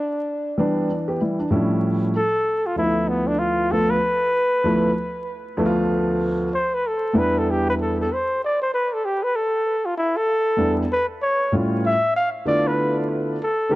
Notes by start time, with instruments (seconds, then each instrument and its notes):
Already playing: flugelhorn D4
0.58 grand piano E3 G3 B3 D4
0.89 grand piano D4
1.08 grand piano B3 G4
1.21 grand piano G3 E4
1.39 grand piano D4
1.51 grand piano A2 F3 G3 C#4 E4
2.16 flugelhorn A4
2.66 flugelhorn F4
2.76 grand piano D2 F3 A3 B3 D#4, flugelhorn E4
2.84 grand piano E4
3.09 flugelhorn B3
3.27 flugelhorn D4
3.39 flugelhorn F4
3.70 grand piano D2 F3 A3 B3 F4, flugelhorn A4
3.90 flugelhorn B4
4.64 grand piano D2 F3 A3 B3 E4
5.57 grand piano D2 F3 A3 B3 E4
5.66 grand piano F4
6.54 flugelhorn C5
6.74 flugelhorn B4
6.87 flugelhorn A4
7.13 grand piano E2 G3 B3 D4 E4
7.18 flugelhorn B4
7.38 flugelhorn A4
7.51 flugelhorn G4
7.70 flugelhorn B4
7.81 flugelhorn A4
8.01 flugelhorn A4
8.13 flugelhorn C5
8.44 flugelhorn D5
8.62 flugelhorn C5
8.74 flugelhorn B4
8.93 flugelhorn A4
9.05 flugelhorn G4
9.23 flugelhorn B4
9.36 flugelhorn A4
9.85 flugelhorn F4
9.98 flugelhorn E4
10.17 flugelhorn A4
10.57 grand piano E2 G3 B3 D4 E4
10.92 flugelhorn B4
11.22 flugelhorn C#5
11.52 grand piano A2 G3 C#4 E4 F4
11.86 flugelhorn E5
12.16 flugelhorn F5
12.46 grand piano D3 A3 B3 E4 F4, flugelhorn D5
12.67 flugelhorn B4
13.43 flugelhorn A4
13.69 grand piano D3 A3 B3 E4 G4